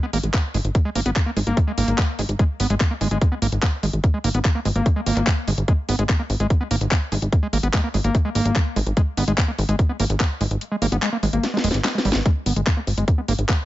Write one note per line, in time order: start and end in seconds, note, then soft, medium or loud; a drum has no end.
0.03 0.06 B3 medium
0.13 0.19 G#1 loud
0.13 0.18 A#3 loud
0.13 open hi-hat loud
0.24 0.29 G#1 medium
0.24 closed hi-hat medium
0.34 0.37 A#3 medium
0.34 kick loud
0.34 clap loud
0.34 closed hi-hat medium
0.54 0.60 G#1 medium
0.54 0.57 G#3 medium
0.54 open hi-hat loud
0.65 0.70 G#1 medium
0.65 closed hi-hat medium
0.75 kick loud
0.75 closed hi-hat medium
0.85 0.90 G#3 medium
0.95 1.01 G#1 medium
0.95 1.00 A#3 loud
0.95 open hi-hat loud
1.06 1.11 G#1 medium
1.06 1.11 B3 medium
1.06 closed hi-hat medium
1.16 kick loud
1.16 clap loud
1.16 closed hi-hat medium
1.26 1.31 A#3 medium
1.37 1.42 G#1 medium
1.37 1.39 G#3 medium
1.37 open hi-hat loud
1.47 1.53 G#1 medium
1.47 1.59 A#3 medium
1.47 closed hi-hat medium
1.57 1.60 G#3 loud
1.57 kick loud
1.57 closed hi-hat medium
1.67 1.72 G#3 medium
1.78 1.83 G#1 loud
1.78 2.00 A#3 loud
1.78 open hi-hat loud
1.88 1.94 G#1 medium
1.88 closed hi-hat medium
1.98 2.03 G#3 medium
1.98 kick loud
1.98 clap loud
1.98 closed hi-hat medium
2.19 2.24 G#1 medium
2.19 2.22 G#3 medium
2.19 open hi-hat loud
2.29 2.35 G#1 medium
2.29 closed hi-hat medium
2.39 2.44 G#3 medium
2.39 kick loud
2.39 closed hi-hat medium
2.60 2.66 G#1 medium
2.60 2.67 B3 medium
2.60 open hi-hat loud
2.70 2.76 G#1 medium
2.70 2.75 G#3 medium
2.70 closed hi-hat medium
2.80 2.83 A#3 loud
2.80 kick loud
2.80 clap loud
2.80 closed hi-hat medium
2.91 2.94 A#3 medium
3.01 3.07 G#1 medium
3.01 3.08 G#3 medium
3.01 open hi-hat loud
3.11 3.17 G#1 medium
3.11 3.18 G#3 medium
3.11 closed hi-hat medium
3.21 kick loud
3.21 closed hi-hat medium
3.32 3.35 B3 medium
3.42 3.48 G#1 loud
3.42 3.47 A#3 loud
3.42 open hi-hat loud
3.52 3.58 G#1 medium
3.52 closed hi-hat medium
3.63 3.65 A#3 medium
3.63 kick loud
3.63 clap loud
3.63 closed hi-hat medium
3.83 3.89 G#1 medium
3.83 3.86 G#3 medium
3.83 open hi-hat loud
3.93 3.99 G#1 medium
3.93 closed hi-hat medium
4.04 kick loud
4.04 closed hi-hat medium
4.14 4.19 G#3 medium
4.24 4.30 G#1 loud
4.24 4.29 A#3 loud
4.24 open hi-hat loud
4.34 4.40 G#1 medium
4.34 4.39 B3 medium
4.34 closed hi-hat medium
4.45 kick loud
4.45 clap loud
4.45 closed hi-hat medium
4.55 4.60 A#3 medium
4.65 4.71 G#1 loud
4.65 4.68 G#3 medium
4.65 open hi-hat loud
4.76 4.81 G#1 medium
4.76 4.87 A#3 medium
4.76 closed hi-hat medium
4.86 4.89 G#3 loud
4.86 kick loud
4.86 closed hi-hat medium
4.96 5.01 G#3 medium
5.06 5.12 G#1 loud
5.06 5.28 A#3 loud
5.06 open hi-hat loud
5.17 5.22 G#1 medium
5.17 clap soft
5.17 closed hi-hat medium
5.27 5.32 G#3 medium
5.27 kick loud
5.27 clap loud
5.27 closed hi-hat medium
5.48 5.53 G#1 loud
5.48 5.50 G#3 medium
5.48 open hi-hat loud
5.58 5.64 G#1 medium
5.58 closed hi-hat medium
5.68 5.73 G#3 medium
5.68 kick loud
5.68 closed hi-hat medium
5.89 5.94 G#1 medium
5.89 5.96 B3 medium
5.89 open hi-hat loud
5.99 6.05 G#1 medium
5.99 6.04 G#3 medium
5.99 closed hi-hat medium
6.09 6.12 A#3 loud
6.09 kick loud
6.09 clap loud
6.09 closed hi-hat medium
6.19 6.22 A#3 medium
6.30 6.35 G#1 medium
6.30 open hi-hat loud
6.40 6.46 G#1 medium
6.40 6.47 G#3 medium
6.40 closed hi-hat medium
6.50 kick loud
6.50 closed hi-hat medium
6.61 6.63 B3 medium
6.71 6.77 G#1 medium
6.71 6.76 A#3 loud
6.71 open hi-hat loud
6.81 6.87 G#1 medium
6.81 closed hi-hat medium
6.91 6.94 A#3 medium
6.91 kick loud
6.91 clap loud
6.91 closed hi-hat medium
7.12 7.18 G#1 loud
7.12 7.15 G#3 medium
7.12 open hi-hat loud
7.22 7.28 G#1 medium
7.22 closed hi-hat medium
7.32 kick loud
7.32 closed hi-hat medium
7.43 7.47 G#3 medium
7.53 7.59 G#1 loud
7.53 7.58 A#3 loud
7.53 open hi-hat loud
7.63 7.69 G#1 medium
7.63 7.68 B3 medium
7.63 closed hi-hat medium
7.74 7.81 G#3 medium
7.74 kick loud
7.74 clap loud
7.74 closed hi-hat medium
7.84 7.89 A#3 medium
7.94 8.00 G#1 medium
7.94 7.97 G#3 medium
7.94 open hi-hat loud
8.04 8.10 G#1 medium
8.04 8.16 A#3 medium
8.04 closed hi-hat medium
8.15 8.17 G#3 loud
8.15 kick loud
8.15 closed hi-hat medium
8.25 8.30 G#3 medium
8.35 8.41 G#1 medium
8.35 8.57 A#3 loud
8.35 open hi-hat loud
8.45 8.51 G#1 medium
8.45 closed hi-hat medium
8.56 8.60 G#3 medium
8.56 kick loud
8.56 clap loud
8.56 closed hi-hat medium
8.76 8.82 G#1 medium
8.76 8.79 G#3 medium
8.76 open hi-hat loud
8.87 8.92 G#1 medium
8.87 closed hi-hat medium
8.97 9.02 G#3 medium
8.97 kick loud
8.97 closed hi-hat medium
9.17 9.23 G#1 loud
9.17 9.24 B3 medium
9.17 open hi-hat loud
9.28 9.33 G#1 medium
9.28 9.32 G#3 medium
9.28 closed hi-hat medium
9.38 9.41 A#3 loud
9.38 kick loud
9.38 clap loud
9.38 closed hi-hat medium
9.48 9.51 A#3 medium
9.58 9.64 G#1 medium
9.58 open hi-hat loud
9.69 9.74 G#1 medium
9.69 9.76 G#3 medium
9.69 closed hi-hat medium
9.79 kick loud
9.79 closed hi-hat medium
9.89 9.92 B3 medium
10.00 10.05 G#1 loud
10.00 10.04 A#3 loud
10.00 open hi-hat loud
10.10 10.16 G#1 medium
10.10 closed hi-hat medium
10.20 10.23 A#3 medium
10.20 kick loud
10.20 clap loud
10.20 closed hi-hat medium
10.41 10.46 G#1 medium
10.41 10.44 G#3 medium
10.41 open hi-hat loud
10.51 10.57 G#1 medium
10.51 closed hi-hat medium
10.61 closed hi-hat medium
10.72 10.76 G#3 medium
10.82 10.87 G#1 medium
10.82 10.87 A#3 loud
10.82 open hi-hat loud
10.92 10.98 G#1 medium
10.92 10.97 B3 medium
10.92 closed hi-hat medium
11.02 11.09 G#3 medium
11.02 clap loud
11.02 closed hi-hat medium
11.13 11.17 A#3 medium
11.23 11.29 G#1 medium
11.23 11.26 G#3 medium
11.23 open hi-hat loud
11.33 11.39 G#1 medium
11.33 11.45 A#3 medium
11.33 closed hi-hat medium
11.43 11.46 G#3 loud
11.43 snare medium
11.43 closed hi-hat medium
11.54 11.58 G#3 medium
11.54 snare medium
11.64 11.70 D#1 medium
11.64 11.69 G#3 loud
11.64 open hi-hat loud
11.71 11.80 G#1 medium
11.71 snare medium
11.71 closed hi-hat medium
11.84 11.87 G#3 loud
11.84 snare medium
11.84 clap loud
11.84 closed hi-hat medium
11.95 11.99 G#3 medium
11.95 snare loud
12.05 12.11 G#1 loud
12.05 12.10 G3 loud
12.05 open hi-hat loud
12.12 12.21 G#1 medium
12.12 snare loud
12.12 closed hi-hat medium
12.26 12.30 G#3 medium
12.26 kick loud
12.26 closed hi-hat medium
12.46 12.52 G#1 medium
12.46 12.53 B3 medium
12.46 open hi-hat loud
12.56 12.62 G#1 medium
12.56 12.61 G#3 medium
12.56 closed hi-hat medium
12.67 12.70 A#3 loud
12.67 kick loud
12.67 clap loud
12.67 closed hi-hat medium
12.77 12.80 A#3 medium
12.87 12.93 G#1 medium
12.87 open hi-hat loud
12.97 13.03 G#1 medium
12.97 13.05 G#3 medium
12.97 closed hi-hat medium
13.08 kick loud
13.08 closed hi-hat medium
13.18 13.21 B3 medium
13.28 13.34 G#1 loud
13.28 13.33 A#3 loud
13.28 open hi-hat loud
13.39 13.44 G#1 medium
13.39 closed hi-hat medium
13.49 13.52 A#3 medium
13.49 kick loud
13.49 clap loud
13.49 closed hi-hat medium